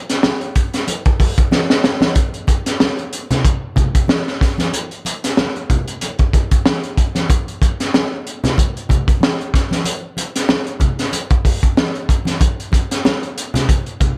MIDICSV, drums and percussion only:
0, 0, Header, 1, 2, 480
1, 0, Start_track
1, 0, Tempo, 640342
1, 1620, Time_signature, 4, 2, 24, 8
1, 10629, End_track
2, 0, Start_track
2, 0, Title_t, "Drums"
2, 71, Note_on_c, 9, 42, 54
2, 72, Note_on_c, 9, 38, 34
2, 146, Note_off_c, 9, 42, 0
2, 147, Note_off_c, 9, 38, 0
2, 174, Note_on_c, 9, 38, 118
2, 180, Note_on_c, 9, 63, 73
2, 249, Note_off_c, 9, 38, 0
2, 254, Note_off_c, 9, 63, 0
2, 308, Note_on_c, 9, 42, 33
2, 383, Note_off_c, 9, 42, 0
2, 416, Note_on_c, 9, 42, 69
2, 418, Note_on_c, 9, 36, 83
2, 491, Note_off_c, 9, 42, 0
2, 493, Note_off_c, 9, 36, 0
2, 551, Note_on_c, 9, 42, 52
2, 555, Note_on_c, 9, 38, 36
2, 626, Note_off_c, 9, 42, 0
2, 630, Note_off_c, 9, 38, 0
2, 656, Note_on_c, 9, 62, 51
2, 658, Note_on_c, 9, 42, 72
2, 731, Note_off_c, 9, 62, 0
2, 733, Note_off_c, 9, 42, 0
2, 791, Note_on_c, 9, 42, 32
2, 794, Note_on_c, 9, 36, 105
2, 866, Note_off_c, 9, 42, 0
2, 869, Note_off_c, 9, 36, 0
2, 895, Note_on_c, 9, 62, 43
2, 898, Note_on_c, 9, 36, 92
2, 901, Note_on_c, 9, 46, 64
2, 970, Note_off_c, 9, 62, 0
2, 973, Note_off_c, 9, 36, 0
2, 976, Note_off_c, 9, 46, 0
2, 1032, Note_on_c, 9, 42, 59
2, 1034, Note_on_c, 9, 36, 91
2, 1107, Note_off_c, 9, 42, 0
2, 1109, Note_off_c, 9, 36, 0
2, 1135, Note_on_c, 9, 63, 77
2, 1140, Note_on_c, 9, 38, 55
2, 1210, Note_off_c, 9, 63, 0
2, 1215, Note_off_c, 9, 38, 0
2, 1274, Note_on_c, 9, 38, 64
2, 1349, Note_off_c, 9, 38, 0
2, 1380, Note_on_c, 9, 38, 99
2, 1455, Note_off_c, 9, 38, 0
2, 1505, Note_on_c, 9, 63, 71
2, 1512, Note_on_c, 9, 38, 89
2, 1580, Note_off_c, 9, 63, 0
2, 1587, Note_off_c, 9, 38, 0
2, 1615, Note_on_c, 9, 42, 88
2, 1617, Note_on_c, 9, 62, 54
2, 1618, Note_on_c, 9, 36, 124
2, 1690, Note_off_c, 9, 42, 0
2, 1691, Note_off_c, 9, 62, 0
2, 1693, Note_off_c, 9, 36, 0
2, 1753, Note_on_c, 9, 42, 35
2, 1828, Note_off_c, 9, 42, 0
2, 1854, Note_on_c, 9, 62, 49
2, 1858, Note_on_c, 9, 36, 82
2, 1862, Note_on_c, 9, 42, 77
2, 1929, Note_off_c, 9, 62, 0
2, 1933, Note_off_c, 9, 36, 0
2, 1937, Note_off_c, 9, 42, 0
2, 1996, Note_on_c, 9, 38, 34
2, 1996, Note_on_c, 9, 42, 64
2, 2070, Note_off_c, 9, 42, 0
2, 2071, Note_off_c, 9, 38, 0
2, 2100, Note_on_c, 9, 38, 122
2, 2111, Note_on_c, 9, 63, 80
2, 2175, Note_off_c, 9, 38, 0
2, 2186, Note_off_c, 9, 63, 0
2, 2239, Note_on_c, 9, 42, 34
2, 2314, Note_off_c, 9, 42, 0
2, 2344, Note_on_c, 9, 42, 70
2, 2419, Note_off_c, 9, 42, 0
2, 2478, Note_on_c, 9, 64, 94
2, 2480, Note_on_c, 9, 42, 48
2, 2484, Note_on_c, 9, 38, 37
2, 2553, Note_off_c, 9, 64, 0
2, 2555, Note_off_c, 9, 42, 0
2, 2559, Note_off_c, 9, 38, 0
2, 2583, Note_on_c, 9, 36, 97
2, 2584, Note_on_c, 9, 62, 48
2, 2586, Note_on_c, 9, 42, 82
2, 2658, Note_off_c, 9, 36, 0
2, 2659, Note_off_c, 9, 62, 0
2, 2661, Note_off_c, 9, 42, 0
2, 2818, Note_on_c, 9, 64, 84
2, 2824, Note_on_c, 9, 36, 87
2, 2829, Note_on_c, 9, 42, 61
2, 2893, Note_off_c, 9, 64, 0
2, 2899, Note_off_c, 9, 36, 0
2, 2904, Note_off_c, 9, 42, 0
2, 2960, Note_on_c, 9, 36, 89
2, 2960, Note_on_c, 9, 42, 66
2, 3035, Note_off_c, 9, 36, 0
2, 3035, Note_off_c, 9, 42, 0
2, 3060, Note_on_c, 9, 63, 78
2, 3068, Note_on_c, 9, 38, 93
2, 3135, Note_off_c, 9, 63, 0
2, 3143, Note_off_c, 9, 38, 0
2, 3206, Note_on_c, 9, 38, 31
2, 3281, Note_off_c, 9, 38, 0
2, 3308, Note_on_c, 9, 36, 93
2, 3313, Note_on_c, 9, 38, 35
2, 3317, Note_on_c, 9, 42, 70
2, 3383, Note_off_c, 9, 36, 0
2, 3388, Note_off_c, 9, 38, 0
2, 3392, Note_off_c, 9, 42, 0
2, 3434, Note_on_c, 9, 63, 77
2, 3440, Note_on_c, 9, 38, 35
2, 3446, Note_on_c, 9, 42, 48
2, 3509, Note_off_c, 9, 63, 0
2, 3515, Note_off_c, 9, 38, 0
2, 3521, Note_off_c, 9, 42, 0
2, 3547, Note_on_c, 9, 62, 52
2, 3550, Note_on_c, 9, 42, 84
2, 3622, Note_off_c, 9, 62, 0
2, 3625, Note_off_c, 9, 42, 0
2, 3682, Note_on_c, 9, 42, 33
2, 3757, Note_off_c, 9, 42, 0
2, 3785, Note_on_c, 9, 62, 48
2, 3792, Note_on_c, 9, 42, 77
2, 3860, Note_off_c, 9, 62, 0
2, 3867, Note_off_c, 9, 42, 0
2, 3928, Note_on_c, 9, 42, 60
2, 3929, Note_on_c, 9, 38, 36
2, 4003, Note_off_c, 9, 42, 0
2, 4004, Note_off_c, 9, 38, 0
2, 4028, Note_on_c, 9, 38, 104
2, 4039, Note_on_c, 9, 63, 78
2, 4103, Note_off_c, 9, 38, 0
2, 4114, Note_off_c, 9, 63, 0
2, 4166, Note_on_c, 9, 42, 32
2, 4241, Note_off_c, 9, 42, 0
2, 4271, Note_on_c, 9, 36, 80
2, 4272, Note_on_c, 9, 42, 63
2, 4278, Note_on_c, 9, 64, 84
2, 4346, Note_off_c, 9, 36, 0
2, 4347, Note_off_c, 9, 42, 0
2, 4353, Note_off_c, 9, 64, 0
2, 4404, Note_on_c, 9, 42, 48
2, 4479, Note_off_c, 9, 42, 0
2, 4508, Note_on_c, 9, 42, 76
2, 4518, Note_on_c, 9, 62, 51
2, 4583, Note_off_c, 9, 42, 0
2, 4593, Note_off_c, 9, 62, 0
2, 4638, Note_on_c, 9, 42, 35
2, 4643, Note_on_c, 9, 36, 92
2, 4713, Note_off_c, 9, 42, 0
2, 4718, Note_off_c, 9, 36, 0
2, 4748, Note_on_c, 9, 36, 85
2, 4752, Note_on_c, 9, 42, 57
2, 4823, Note_off_c, 9, 36, 0
2, 4827, Note_off_c, 9, 42, 0
2, 4883, Note_on_c, 9, 42, 59
2, 4884, Note_on_c, 9, 36, 85
2, 4958, Note_off_c, 9, 42, 0
2, 4959, Note_off_c, 9, 36, 0
2, 4988, Note_on_c, 9, 63, 69
2, 4989, Note_on_c, 9, 38, 106
2, 5063, Note_off_c, 9, 63, 0
2, 5064, Note_off_c, 9, 38, 0
2, 5124, Note_on_c, 9, 42, 37
2, 5199, Note_off_c, 9, 42, 0
2, 5229, Note_on_c, 9, 36, 95
2, 5231, Note_on_c, 9, 42, 76
2, 5303, Note_off_c, 9, 36, 0
2, 5306, Note_off_c, 9, 42, 0
2, 5359, Note_on_c, 9, 38, 35
2, 5362, Note_on_c, 9, 63, 71
2, 5365, Note_on_c, 9, 42, 48
2, 5434, Note_off_c, 9, 38, 0
2, 5437, Note_off_c, 9, 63, 0
2, 5440, Note_off_c, 9, 42, 0
2, 5465, Note_on_c, 9, 62, 52
2, 5470, Note_on_c, 9, 36, 121
2, 5473, Note_on_c, 9, 42, 94
2, 5540, Note_off_c, 9, 62, 0
2, 5545, Note_off_c, 9, 36, 0
2, 5548, Note_off_c, 9, 42, 0
2, 5608, Note_on_c, 9, 42, 34
2, 5683, Note_off_c, 9, 42, 0
2, 5709, Note_on_c, 9, 36, 81
2, 5710, Note_on_c, 9, 62, 50
2, 5716, Note_on_c, 9, 42, 79
2, 5784, Note_off_c, 9, 36, 0
2, 5785, Note_off_c, 9, 62, 0
2, 5791, Note_off_c, 9, 42, 0
2, 5848, Note_on_c, 9, 42, 57
2, 5849, Note_on_c, 9, 38, 31
2, 5923, Note_off_c, 9, 42, 0
2, 5924, Note_off_c, 9, 38, 0
2, 5954, Note_on_c, 9, 38, 110
2, 5957, Note_on_c, 9, 63, 73
2, 6029, Note_off_c, 9, 38, 0
2, 6032, Note_off_c, 9, 63, 0
2, 6197, Note_on_c, 9, 42, 65
2, 6272, Note_off_c, 9, 42, 0
2, 6324, Note_on_c, 9, 64, 99
2, 6331, Note_on_c, 9, 42, 52
2, 6334, Note_on_c, 9, 38, 38
2, 6399, Note_off_c, 9, 64, 0
2, 6406, Note_off_c, 9, 42, 0
2, 6409, Note_off_c, 9, 38, 0
2, 6428, Note_on_c, 9, 62, 49
2, 6431, Note_on_c, 9, 36, 97
2, 6438, Note_on_c, 9, 42, 84
2, 6503, Note_off_c, 9, 62, 0
2, 6506, Note_off_c, 9, 36, 0
2, 6513, Note_off_c, 9, 42, 0
2, 6573, Note_on_c, 9, 42, 36
2, 6648, Note_off_c, 9, 42, 0
2, 6665, Note_on_c, 9, 62, 38
2, 6665, Note_on_c, 9, 64, 83
2, 6671, Note_on_c, 9, 36, 82
2, 6678, Note_on_c, 9, 42, 59
2, 6740, Note_off_c, 9, 62, 0
2, 6740, Note_off_c, 9, 64, 0
2, 6746, Note_off_c, 9, 36, 0
2, 6753, Note_off_c, 9, 42, 0
2, 6805, Note_on_c, 9, 36, 94
2, 6810, Note_on_c, 9, 42, 60
2, 6880, Note_off_c, 9, 36, 0
2, 6885, Note_off_c, 9, 42, 0
2, 6902, Note_on_c, 9, 63, 70
2, 6919, Note_on_c, 9, 38, 108
2, 6977, Note_off_c, 9, 63, 0
2, 6994, Note_off_c, 9, 38, 0
2, 7055, Note_on_c, 9, 42, 33
2, 7130, Note_off_c, 9, 42, 0
2, 7150, Note_on_c, 9, 36, 94
2, 7158, Note_on_c, 9, 38, 35
2, 7161, Note_on_c, 9, 42, 77
2, 7225, Note_off_c, 9, 36, 0
2, 7233, Note_off_c, 9, 38, 0
2, 7236, Note_off_c, 9, 42, 0
2, 7278, Note_on_c, 9, 63, 75
2, 7286, Note_on_c, 9, 38, 35
2, 7292, Note_on_c, 9, 42, 46
2, 7353, Note_off_c, 9, 63, 0
2, 7361, Note_off_c, 9, 38, 0
2, 7367, Note_off_c, 9, 42, 0
2, 7380, Note_on_c, 9, 62, 54
2, 7387, Note_on_c, 9, 42, 87
2, 7455, Note_off_c, 9, 62, 0
2, 7462, Note_off_c, 9, 42, 0
2, 7621, Note_on_c, 9, 62, 49
2, 7629, Note_on_c, 9, 42, 78
2, 7696, Note_off_c, 9, 62, 0
2, 7704, Note_off_c, 9, 42, 0
2, 7763, Note_on_c, 9, 42, 60
2, 7764, Note_on_c, 9, 38, 35
2, 7838, Note_off_c, 9, 42, 0
2, 7839, Note_off_c, 9, 38, 0
2, 7862, Note_on_c, 9, 38, 99
2, 7862, Note_on_c, 9, 63, 76
2, 7937, Note_off_c, 9, 38, 0
2, 7937, Note_off_c, 9, 63, 0
2, 7995, Note_on_c, 9, 42, 34
2, 8070, Note_off_c, 9, 42, 0
2, 8094, Note_on_c, 9, 64, 78
2, 8100, Note_on_c, 9, 42, 65
2, 8103, Note_on_c, 9, 36, 84
2, 8169, Note_off_c, 9, 64, 0
2, 8175, Note_off_c, 9, 42, 0
2, 8178, Note_off_c, 9, 36, 0
2, 8237, Note_on_c, 9, 42, 45
2, 8241, Note_on_c, 9, 38, 31
2, 8312, Note_off_c, 9, 42, 0
2, 8316, Note_off_c, 9, 38, 0
2, 8339, Note_on_c, 9, 62, 55
2, 8343, Note_on_c, 9, 42, 78
2, 8414, Note_off_c, 9, 62, 0
2, 8418, Note_off_c, 9, 42, 0
2, 8473, Note_on_c, 9, 42, 37
2, 8476, Note_on_c, 9, 36, 100
2, 8548, Note_off_c, 9, 42, 0
2, 8551, Note_off_c, 9, 36, 0
2, 8582, Note_on_c, 9, 36, 84
2, 8584, Note_on_c, 9, 46, 57
2, 8657, Note_off_c, 9, 36, 0
2, 8659, Note_off_c, 9, 46, 0
2, 8718, Note_on_c, 9, 36, 75
2, 8720, Note_on_c, 9, 42, 60
2, 8793, Note_off_c, 9, 36, 0
2, 8795, Note_off_c, 9, 42, 0
2, 8823, Note_on_c, 9, 63, 66
2, 8826, Note_on_c, 9, 38, 100
2, 8898, Note_off_c, 9, 63, 0
2, 8901, Note_off_c, 9, 38, 0
2, 8960, Note_on_c, 9, 42, 33
2, 9035, Note_off_c, 9, 42, 0
2, 9063, Note_on_c, 9, 36, 94
2, 9069, Note_on_c, 9, 42, 80
2, 9137, Note_off_c, 9, 36, 0
2, 9144, Note_off_c, 9, 42, 0
2, 9184, Note_on_c, 9, 63, 78
2, 9194, Note_on_c, 9, 38, 34
2, 9200, Note_on_c, 9, 42, 45
2, 9259, Note_off_c, 9, 63, 0
2, 9269, Note_off_c, 9, 38, 0
2, 9275, Note_off_c, 9, 42, 0
2, 9293, Note_on_c, 9, 62, 57
2, 9301, Note_on_c, 9, 36, 123
2, 9303, Note_on_c, 9, 42, 92
2, 9368, Note_off_c, 9, 62, 0
2, 9376, Note_off_c, 9, 36, 0
2, 9378, Note_off_c, 9, 42, 0
2, 9444, Note_on_c, 9, 42, 35
2, 9519, Note_off_c, 9, 42, 0
2, 9533, Note_on_c, 9, 62, 49
2, 9541, Note_on_c, 9, 36, 81
2, 9549, Note_on_c, 9, 42, 84
2, 9608, Note_off_c, 9, 62, 0
2, 9616, Note_off_c, 9, 36, 0
2, 9624, Note_off_c, 9, 42, 0
2, 9680, Note_on_c, 9, 42, 58
2, 9681, Note_on_c, 9, 38, 34
2, 9755, Note_off_c, 9, 42, 0
2, 9756, Note_off_c, 9, 38, 0
2, 9782, Note_on_c, 9, 63, 79
2, 9784, Note_on_c, 9, 38, 103
2, 9857, Note_off_c, 9, 63, 0
2, 9859, Note_off_c, 9, 38, 0
2, 9917, Note_on_c, 9, 42, 33
2, 9992, Note_off_c, 9, 42, 0
2, 10027, Note_on_c, 9, 42, 69
2, 10102, Note_off_c, 9, 42, 0
2, 10149, Note_on_c, 9, 64, 89
2, 10160, Note_on_c, 9, 42, 53
2, 10163, Note_on_c, 9, 38, 36
2, 10224, Note_off_c, 9, 64, 0
2, 10235, Note_off_c, 9, 42, 0
2, 10238, Note_off_c, 9, 38, 0
2, 10259, Note_on_c, 9, 62, 49
2, 10261, Note_on_c, 9, 36, 96
2, 10264, Note_on_c, 9, 42, 75
2, 10334, Note_off_c, 9, 62, 0
2, 10336, Note_off_c, 9, 36, 0
2, 10339, Note_off_c, 9, 42, 0
2, 10392, Note_on_c, 9, 42, 31
2, 10467, Note_off_c, 9, 42, 0
2, 10497, Note_on_c, 9, 64, 77
2, 10500, Note_on_c, 9, 36, 86
2, 10502, Note_on_c, 9, 42, 58
2, 10572, Note_off_c, 9, 64, 0
2, 10575, Note_off_c, 9, 36, 0
2, 10577, Note_off_c, 9, 42, 0
2, 10629, End_track
0, 0, End_of_file